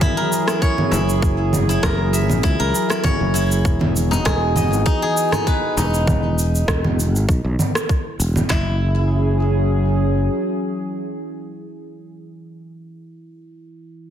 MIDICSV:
0, 0, Header, 1, 7, 480
1, 0, Start_track
1, 0, Tempo, 606061
1, 971, Time_signature, 4, 2, 24, 8
1, 11168, End_track
2, 0, Start_track
2, 0, Title_t, "Guzheng"
2, 0, Program_c, 0, 107
2, 0, Note_on_c, 0, 68, 80
2, 0, Note_on_c, 0, 70, 106
2, 0, Note_on_c, 0, 76, 70
2, 10, Note_on_c, 0, 64, 106
2, 133, Note_off_c, 0, 70, 0
2, 136, Note_on_c, 0, 70, 100
2, 374, Note_off_c, 0, 64, 0
2, 377, Note_on_c, 0, 64, 72
2, 490, Note_on_c, 0, 73, 101
2, 495, Note_off_c, 0, 68, 0
2, 723, Note_off_c, 0, 64, 0
2, 726, Note_on_c, 0, 64, 77
2, 1134, Note_off_c, 0, 76, 0
2, 1335, Note_off_c, 0, 64, 0
2, 1338, Note_on_c, 0, 64, 76
2, 1445, Note_off_c, 0, 70, 0
2, 1448, Note_on_c, 0, 70, 100
2, 1687, Note_on_c, 0, 76, 70
2, 1923, Note_off_c, 0, 64, 0
2, 1926, Note_on_c, 0, 64, 105
2, 2004, Note_off_c, 0, 73, 0
2, 2053, Note_off_c, 0, 70, 0
2, 2056, Note_on_c, 0, 70, 99
2, 2290, Note_off_c, 0, 64, 0
2, 2294, Note_on_c, 0, 64, 81
2, 2404, Note_on_c, 0, 73, 104
2, 2641, Note_off_c, 0, 64, 0
2, 2644, Note_on_c, 0, 64, 78
2, 3052, Note_off_c, 0, 76, 0
2, 3255, Note_on_c, 0, 63, 78
2, 3302, Note_off_c, 0, 64, 0
2, 3367, Note_on_c, 0, 68, 110
2, 3608, Note_on_c, 0, 75, 74
2, 3736, Note_off_c, 0, 70, 0
2, 3843, Note_off_c, 0, 63, 0
2, 3846, Note_on_c, 0, 63, 108
2, 3918, Note_off_c, 0, 73, 0
2, 3976, Note_off_c, 0, 68, 0
2, 3979, Note_on_c, 0, 68, 104
2, 4216, Note_off_c, 0, 63, 0
2, 4219, Note_on_c, 0, 63, 80
2, 4332, Note_on_c, 0, 71, 103
2, 4569, Note_off_c, 0, 63, 0
2, 4572, Note_on_c, 0, 63, 77
2, 5021, Note_off_c, 0, 75, 0
2, 5779, Note_off_c, 0, 68, 0
2, 5955, Note_off_c, 0, 71, 0
2, 6714, Note_off_c, 0, 63, 0
2, 6726, Note_on_c, 0, 64, 95
2, 8795, Note_off_c, 0, 64, 0
2, 11168, End_track
3, 0, Start_track
3, 0, Title_t, "Ambient pad"
3, 0, Program_c, 1, 92
3, 0, Note_on_c, 1, 54, 80
3, 0, Note_on_c, 1, 61, 74
3, 0, Note_on_c, 1, 68, 92
3, 940, Note_off_c, 1, 61, 0
3, 2860, Note_off_c, 1, 54, 0
3, 2861, Note_off_c, 1, 68, 0
3, 2891, Note_on_c, 1, 52, 82
3, 2891, Note_on_c, 1, 59, 70
3, 2891, Note_on_c, 1, 66, 86
3, 4792, Note_off_c, 1, 52, 0
3, 4792, Note_off_c, 1, 59, 0
3, 4792, Note_off_c, 1, 66, 0
3, 6728, Note_on_c, 1, 54, 86
3, 6728, Note_on_c, 1, 61, 74
3, 6729, Note_on_c, 1, 68, 91
3, 9251, Note_off_c, 1, 54, 0
3, 9252, Note_off_c, 1, 61, 0
3, 9252, Note_off_c, 1, 68, 0
3, 11168, End_track
4, 0, Start_track
4, 0, Title_t, "Singing bowl"
4, 0, Program_c, 2, 14
4, 0, Note_on_c, 2, 52, 81
4, 0, Note_on_c, 2, 64, 75
4, 4821, Note_off_c, 2, 52, 0
4, 4821, Note_off_c, 2, 64, 0
4, 11168, End_track
5, 0, Start_track
5, 0, Title_t, "Fretless electric bass"
5, 0, Program_c, 3, 35
5, 731, Note_on_c, 3, 30, 88
5, 1407, Note_off_c, 3, 30, 0
5, 1451, Note_on_c, 3, 30, 104
5, 1819, Note_off_c, 3, 30, 0
5, 1819, Note_on_c, 3, 34, 93
5, 1903, Note_off_c, 3, 34, 0
5, 1931, Note_on_c, 3, 37, 84
5, 2028, Note_off_c, 3, 37, 0
5, 2060, Note_on_c, 3, 37, 90
5, 2143, Note_off_c, 3, 37, 0
5, 2541, Note_on_c, 3, 30, 85
5, 2891, Note_off_c, 3, 30, 0
5, 2891, Note_on_c, 3, 28, 86
5, 3326, Note_off_c, 3, 28, 0
5, 3371, Note_on_c, 3, 28, 96
5, 3740, Note_off_c, 3, 28, 0
5, 3740, Note_on_c, 3, 32, 100
5, 3824, Note_off_c, 3, 32, 0
5, 4571, Note_on_c, 3, 28, 91
5, 5247, Note_off_c, 3, 28, 0
5, 5290, Note_on_c, 3, 28, 98
5, 5659, Note_off_c, 3, 28, 0
5, 5659, Note_on_c, 3, 32, 93
5, 5743, Note_off_c, 3, 32, 0
5, 5770, Note_on_c, 3, 35, 80
5, 5867, Note_off_c, 3, 35, 0
5, 5896, Note_on_c, 3, 35, 96
5, 5981, Note_off_c, 3, 35, 0
5, 6491, Note_on_c, 3, 28, 93
5, 6675, Note_off_c, 3, 28, 0
5, 6733, Note_on_c, 3, 30, 94
5, 8140, Note_off_c, 3, 30, 0
5, 11168, End_track
6, 0, Start_track
6, 0, Title_t, "Frame drum"
6, 723, Note_on_c, 9, 64, 89
6, 803, Note_off_c, 9, 64, 0
6, 1451, Note_on_c, 9, 64, 90
6, 1530, Note_off_c, 9, 64, 0
6, 3259, Note_on_c, 9, 64, 81
6, 3338, Note_off_c, 9, 64, 0
6, 3371, Note_on_c, 9, 64, 92
6, 3450, Note_off_c, 9, 64, 0
6, 4570, Note_on_c, 9, 64, 75
6, 4650, Note_off_c, 9, 64, 0
6, 11168, End_track
7, 0, Start_track
7, 0, Title_t, "Drums"
7, 10, Note_on_c, 9, 36, 113
7, 11, Note_on_c, 9, 64, 74
7, 18, Note_on_c, 9, 82, 34
7, 89, Note_off_c, 9, 36, 0
7, 90, Note_off_c, 9, 64, 0
7, 97, Note_off_c, 9, 82, 0
7, 258, Note_on_c, 9, 82, 83
7, 337, Note_off_c, 9, 82, 0
7, 377, Note_on_c, 9, 37, 82
7, 384, Note_on_c, 9, 82, 47
7, 456, Note_off_c, 9, 37, 0
7, 464, Note_off_c, 9, 82, 0
7, 490, Note_on_c, 9, 36, 107
7, 497, Note_on_c, 9, 82, 33
7, 569, Note_off_c, 9, 36, 0
7, 576, Note_off_c, 9, 82, 0
7, 620, Note_on_c, 9, 64, 77
7, 699, Note_off_c, 9, 64, 0
7, 739, Note_on_c, 9, 82, 80
7, 818, Note_off_c, 9, 82, 0
7, 867, Note_on_c, 9, 82, 45
7, 946, Note_off_c, 9, 82, 0
7, 970, Note_on_c, 9, 36, 104
7, 978, Note_on_c, 9, 82, 30
7, 1049, Note_off_c, 9, 36, 0
7, 1058, Note_off_c, 9, 82, 0
7, 1211, Note_on_c, 9, 64, 81
7, 1219, Note_on_c, 9, 82, 77
7, 1290, Note_off_c, 9, 64, 0
7, 1298, Note_off_c, 9, 82, 0
7, 1348, Note_on_c, 9, 82, 42
7, 1427, Note_off_c, 9, 82, 0
7, 1450, Note_on_c, 9, 36, 105
7, 1451, Note_on_c, 9, 37, 73
7, 1459, Note_on_c, 9, 82, 33
7, 1529, Note_off_c, 9, 36, 0
7, 1531, Note_off_c, 9, 37, 0
7, 1538, Note_off_c, 9, 82, 0
7, 1697, Note_on_c, 9, 82, 79
7, 1776, Note_off_c, 9, 82, 0
7, 1819, Note_on_c, 9, 64, 80
7, 1826, Note_on_c, 9, 82, 46
7, 1898, Note_off_c, 9, 64, 0
7, 1905, Note_off_c, 9, 82, 0
7, 1931, Note_on_c, 9, 36, 101
7, 1938, Note_on_c, 9, 82, 30
7, 2010, Note_off_c, 9, 36, 0
7, 2017, Note_off_c, 9, 82, 0
7, 2178, Note_on_c, 9, 82, 73
7, 2257, Note_off_c, 9, 82, 0
7, 2299, Note_on_c, 9, 37, 77
7, 2307, Note_on_c, 9, 82, 46
7, 2378, Note_off_c, 9, 37, 0
7, 2386, Note_off_c, 9, 82, 0
7, 2410, Note_on_c, 9, 64, 77
7, 2411, Note_on_c, 9, 36, 111
7, 2417, Note_on_c, 9, 82, 32
7, 2489, Note_off_c, 9, 64, 0
7, 2490, Note_off_c, 9, 36, 0
7, 2497, Note_off_c, 9, 82, 0
7, 2658, Note_on_c, 9, 82, 78
7, 2737, Note_off_c, 9, 82, 0
7, 2785, Note_on_c, 9, 82, 46
7, 2864, Note_off_c, 9, 82, 0
7, 2891, Note_on_c, 9, 36, 99
7, 2896, Note_on_c, 9, 82, 31
7, 2970, Note_off_c, 9, 36, 0
7, 2975, Note_off_c, 9, 82, 0
7, 3018, Note_on_c, 9, 64, 84
7, 3097, Note_off_c, 9, 64, 0
7, 3138, Note_on_c, 9, 82, 76
7, 3218, Note_off_c, 9, 82, 0
7, 3270, Note_on_c, 9, 82, 43
7, 3349, Note_off_c, 9, 82, 0
7, 3371, Note_on_c, 9, 36, 103
7, 3373, Note_on_c, 9, 37, 80
7, 3381, Note_on_c, 9, 82, 34
7, 3450, Note_off_c, 9, 36, 0
7, 3453, Note_off_c, 9, 37, 0
7, 3460, Note_off_c, 9, 82, 0
7, 3611, Note_on_c, 9, 64, 86
7, 3618, Note_on_c, 9, 82, 76
7, 3690, Note_off_c, 9, 64, 0
7, 3698, Note_off_c, 9, 82, 0
7, 3748, Note_on_c, 9, 82, 43
7, 3827, Note_off_c, 9, 82, 0
7, 3851, Note_on_c, 9, 36, 110
7, 3857, Note_on_c, 9, 82, 31
7, 3930, Note_off_c, 9, 36, 0
7, 3936, Note_off_c, 9, 82, 0
7, 4096, Note_on_c, 9, 82, 71
7, 4175, Note_off_c, 9, 82, 0
7, 4217, Note_on_c, 9, 37, 84
7, 4217, Note_on_c, 9, 64, 79
7, 4224, Note_on_c, 9, 82, 43
7, 4296, Note_off_c, 9, 37, 0
7, 4296, Note_off_c, 9, 64, 0
7, 4303, Note_off_c, 9, 82, 0
7, 4331, Note_on_c, 9, 36, 112
7, 4336, Note_on_c, 9, 82, 31
7, 4410, Note_off_c, 9, 36, 0
7, 4415, Note_off_c, 9, 82, 0
7, 4576, Note_on_c, 9, 82, 73
7, 4655, Note_off_c, 9, 82, 0
7, 4706, Note_on_c, 9, 82, 44
7, 4785, Note_off_c, 9, 82, 0
7, 4811, Note_on_c, 9, 36, 101
7, 4812, Note_on_c, 9, 64, 79
7, 4819, Note_on_c, 9, 82, 31
7, 4890, Note_off_c, 9, 36, 0
7, 4891, Note_off_c, 9, 64, 0
7, 4898, Note_off_c, 9, 82, 0
7, 5058, Note_on_c, 9, 82, 80
7, 5137, Note_off_c, 9, 82, 0
7, 5188, Note_on_c, 9, 82, 41
7, 5267, Note_off_c, 9, 82, 0
7, 5291, Note_on_c, 9, 36, 111
7, 5292, Note_on_c, 9, 37, 86
7, 5299, Note_on_c, 9, 82, 33
7, 5370, Note_off_c, 9, 36, 0
7, 5371, Note_off_c, 9, 37, 0
7, 5378, Note_off_c, 9, 82, 0
7, 5422, Note_on_c, 9, 64, 83
7, 5501, Note_off_c, 9, 64, 0
7, 5541, Note_on_c, 9, 82, 74
7, 5620, Note_off_c, 9, 82, 0
7, 5669, Note_on_c, 9, 82, 42
7, 5748, Note_off_c, 9, 82, 0
7, 5771, Note_on_c, 9, 36, 110
7, 5779, Note_on_c, 9, 82, 33
7, 5850, Note_off_c, 9, 36, 0
7, 5858, Note_off_c, 9, 82, 0
7, 6012, Note_on_c, 9, 64, 83
7, 6020, Note_on_c, 9, 82, 77
7, 6092, Note_off_c, 9, 64, 0
7, 6099, Note_off_c, 9, 82, 0
7, 6141, Note_on_c, 9, 37, 87
7, 6148, Note_on_c, 9, 82, 43
7, 6220, Note_off_c, 9, 37, 0
7, 6227, Note_off_c, 9, 82, 0
7, 6252, Note_on_c, 9, 36, 108
7, 6260, Note_on_c, 9, 82, 33
7, 6331, Note_off_c, 9, 36, 0
7, 6339, Note_off_c, 9, 82, 0
7, 6497, Note_on_c, 9, 82, 73
7, 6576, Note_off_c, 9, 82, 0
7, 6620, Note_on_c, 9, 64, 83
7, 6627, Note_on_c, 9, 82, 45
7, 6699, Note_off_c, 9, 64, 0
7, 6706, Note_off_c, 9, 82, 0
7, 6732, Note_on_c, 9, 36, 105
7, 6733, Note_on_c, 9, 38, 110
7, 6733, Note_on_c, 9, 39, 94
7, 6811, Note_off_c, 9, 36, 0
7, 6813, Note_off_c, 9, 38, 0
7, 6813, Note_off_c, 9, 39, 0
7, 11168, End_track
0, 0, End_of_file